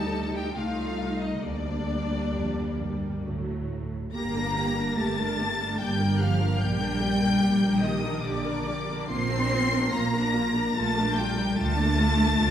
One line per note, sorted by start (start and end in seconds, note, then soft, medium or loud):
0.00 0.56 D2 medium
0.00 0.52 G3 medium
0.00 0.52 D#4 medium
0.00 0.34 A4 medium
0.00 0.34 A5 medium
0.33 0.55 G4 medium
0.33 0.55 G5 medium
0.55 1.45 C2 medium
0.55 1.45 A3 medium
0.55 1.43 D#4 medium
0.55 1.22 F4 medium
0.55 1.21 F5 medium
1.20 1.44 D#4 medium
1.20 1.44 D#5 medium
1.44 2.25 D2 medium
1.44 3.22 D2 medium
1.44 3.25 G3 medium
1.44 3.22 A#3 medium
1.44 3.25 D4 medium
1.44 3.25 D5 medium
2.35 2.77 F2 medium
2.80 3.25 G2 medium
3.25 3.93 D2 medium
3.25 4.14 A2 medium
3.25 3.93 F#3 medium
3.25 3.94 A3 medium
4.13 4.89 G1 medium
4.13 4.95 A#3 medium
4.13 4.35 A#3 medium
4.13 4.35 G4 medium
4.13 4.94 A#5 medium
4.13 4.95 A#6 loud
4.36 4.57 D4 medium
4.36 4.57 A#4 medium
4.57 4.78 A#3 medium
4.57 4.78 G4 medium
4.77 4.99 D4 medium
4.77 4.99 A#4 medium
4.98 5.72 G1 medium
4.98 5.81 A3 medium
4.98 5.18 A#3 medium
4.98 5.18 G4 medium
4.98 5.79 A5 medium
4.98 5.81 A6 loud
5.20 5.40 D4 medium
5.20 5.40 A#4 medium
5.40 5.61 A#3 medium
5.40 5.61 G4 medium
5.61 5.81 D4 medium
5.61 5.81 A#4 medium
5.80 6.52 G1 medium
5.80 6.21 G3 medium
5.80 6.00 A#3 medium
5.80 6.00 G4 medium
5.80 6.21 G5 medium
5.80 6.20 G6 loud
6.01 6.21 D4 medium
6.01 6.21 A#4 medium
6.21 6.61 F3 medium
6.21 6.41 A#3 medium
6.21 6.41 G4 medium
6.21 6.61 F5 medium
6.21 6.61 F6 medium
6.42 6.62 D4 medium
6.42 6.62 A#4 medium
6.61 7.33 A#1 medium
6.61 7.81 G3 loud
6.61 6.81 A#3 medium
6.61 6.80 G4 medium
6.61 7.83 G5 medium
6.61 7.83 G6 loud
6.82 7.02 D4 medium
6.82 7.02 A#4 medium
7.03 7.23 A#3 medium
7.03 7.23 G4 medium
7.23 7.43 D4 medium
7.23 7.43 A#4 medium
7.43 8.15 A#1 medium
7.43 7.62 A#3 medium
7.43 7.62 G4 medium
7.64 7.84 D4 medium
7.64 7.84 A#4 medium
7.82 8.25 D#3 medium
7.82 8.04 A#3 medium
7.82 8.04 G4 medium
7.82 8.24 D#5 medium
7.82 8.24 D#6 loud
8.04 8.24 D4 medium
8.04 8.24 A#4 medium
8.24 9.00 A#1 medium
8.24 9.10 D3 medium
8.24 8.44 A#3 medium
8.24 8.44 G4 medium
8.24 9.10 D5 medium
8.24 9.10 D6 medium
8.46 8.67 D4 medium
8.46 8.67 A#4 medium
8.67 8.89 A#3 medium
8.67 8.89 G4 medium
8.90 9.11 D4 medium
8.90 9.11 A#4 medium
9.09 9.84 A#1 medium
9.09 9.30 A#3 medium
9.09 9.92 C4 loud
9.09 9.30 F4 medium
9.09 9.91 C6 loud
9.09 9.92 C7 loud
9.32 9.53 D4 medium
9.32 9.52 A#4 medium
9.53 9.73 A#3 medium
9.53 9.73 F4 medium
9.73 9.94 D4 medium
9.73 9.93 A#4 medium
9.92 10.66 A#1 medium
9.92 10.76 A#3 medium
9.92 10.13 A#3 medium
9.92 10.13 F4 medium
9.92 10.76 A#5 medium
9.92 10.75 A#6 loud
10.14 10.35 D4 medium
10.14 10.35 A#4 medium
10.35 10.55 A#3 medium
10.35 10.55 F4 medium
10.55 10.76 D4 medium
10.55 10.76 A#4 medium
10.75 11.48 A#1 medium
10.75 11.16 A3 medium
10.75 10.95 A#3 medium
10.75 10.95 F4 medium
10.75 11.17 A5 medium
10.75 11.16 A6 loud
10.96 11.16 D4 medium
10.96 11.17 A#4 medium
11.16 11.57 G3 medium
11.16 11.37 A#3 medium
11.16 11.37 F4 medium
11.16 11.57 G5 medium
11.16 11.57 G6 loud
11.37 11.56 D4 medium
11.37 11.57 A#4 medium
11.57 12.28 D2 medium
11.57 12.51 A3 loud
11.57 11.76 D4 medium
11.57 11.76 F4 medium
11.57 12.51 A5 loud
11.57 12.51 A6 loud
11.78 11.98 A#3 medium
11.78 11.97 D4 medium
11.98 12.17 D4 medium
11.98 12.18 F4 medium
12.18 12.38 A#3 medium
12.18 12.37 D4 medium
12.38 12.51 D2 loud
12.38 12.51 D4 medium
12.38 12.51 F4 medium